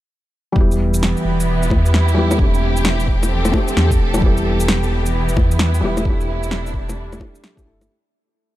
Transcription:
0.52 detuned saw bass E1, felt piano G3 B3, kick
0.57 string section E3, felt piano E4 G4
0.71 shaker
0.94 string section B3, shaker
0.98 string section E4 G4
1.03 snare
1.17 shaker
1.25 detuned saw bass E1
1.40 shaker
1.63 shaker
1.70 detuned saw bass E2, kick, low bongo
1.86 shaker
1.94 snare
2.08 shaker
2.14 felt piano G3 B3 E4 G4
2.31 low bongo, shaker
2.36 detuned saw bass E1, felt piano A3 C4, kick
2.40 string section F3, felt piano D4 G4
2.54 shaker
2.77 shaker
2.85 snare
3.00 string section C4, shaker
3.07 detuned saw bass E1, kick
3.23 string section A4, low bongo, shaker
3.45 low bongo, shaker
3.49 felt piano A3 C4
3.53 felt piano D4 G4, kick, low bongo
3.68 shaker
3.77 detuned saw bass E2, snare
3.91 kick, shaker
4.00 detuned saw bass E1
4.14 felt piano G3, low bongo, shaker
4.20 string section E3, felt piano B3 E4, kick
4.26 felt piano G4
4.37 shaker
4.60 shaker
4.64 string section B3
4.68 snare
4.83 shaker
4.91 detuned saw bass E1
5.06 string section E4, shaker
5.29 shaker
5.36 detuned saw bass E2, kick, low bongo
5.51 shaker
5.59 snare
5.74 shaker
5.81 detuned saw bass E1, felt piano G3 B3 E4
5.85 felt piano G4
5.97 low bongo, shaker
6.01 felt piano A3 D4, kick
6.07 string section C3, felt piano E4 G4
6.21 string section D4, shaker
6.43 shaker
6.51 snare
6.66 shaker
6.72 detuned saw bass E1, string section G3, kick
6.89 low bongo, shaker
7.13 low bongo, shaker
7.18 felt piano A3 D4 E4 G4, kick, low bongo
7.35 shaker
7.44 snare
7.55 felt piano A3 D4 E4, kick, shaker
7.59 felt piano G4
7.63 detuned saw bass G1, felt piano A3 D4 E4 A4
7.81 low bongo, shaker

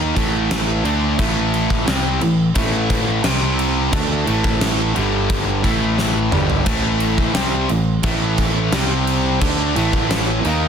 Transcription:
Already playing: picked electric bass D#2, distorted electric guitar D#3 A#3 D#4
0.15 picked electric bass A1, distorted electric guitar A2 E3 A3, kick, crash
0.51 snare, crash
0.84 picked electric bass D2, distorted electric guitar D3 A3 D4, crash
1.19 picked electric bass A1, distorted electric guitar A2 E3 A3, kick, crash
1.54 crash
1.70 kick
1.87 picked electric bass C2, distorted electric guitar C3 G3 C4, snare, crash
2.21 picked electric bass A1, distorted electric guitar A2 E3, crash
2.55 picked electric bass A1, distorted electric guitar A2 E3 A3, kick, crash
2.90 kick, crash
3.24 picked electric bass C2, distorted electric guitar C3 G3 C4, snare, crash
3.59 crash
3.92 picked electric bass D2, distorted electric guitar D3 A3 D4, kick, crash
4.27 picked electric bass A1, distorted electric guitar A2 E3 A3, crash
4.44 kick
4.61 snare, crash
4.94 picked electric bass G1, distorted electric guitar G2 D3 G3, crash
5.30 kick, crash
5.63 picked electric bass A1, distorted electric guitar A2 E3 A3, kick, crash
5.98 snare
6.32 picked electric bass G1, distorted electric guitar G2 D3 G3, mid tom
6.50 floor tom
6.66 picked electric bass A1, distorted electric guitar A2 E3 A3, kick, crash
7.00 crash
7.18 kick
7.34 picked electric bass C2, distorted electric guitar C3 G3 C4, snare, crash
7.69 picked electric bass A1, distorted electric guitar A2 E3, crash
8.03 picked electric bass A1, distorted electric guitar A2 E3 A3, kick, crash
8.38 kick, crash
8.72 picked electric bass C2, distorted electric guitar C3 G3 C4, snare, crash
9.07 crash
9.41 picked electric bass D2, distorted electric guitar D3 A3 D4, kick, crash
9.76 picked electric bass A1, distorted electric guitar A2 E3 A3, crash
9.93 kick
10.11 snare, crash
10.45 picked electric bass D#2, distorted electric guitar D#3 A#3 D#4, crash

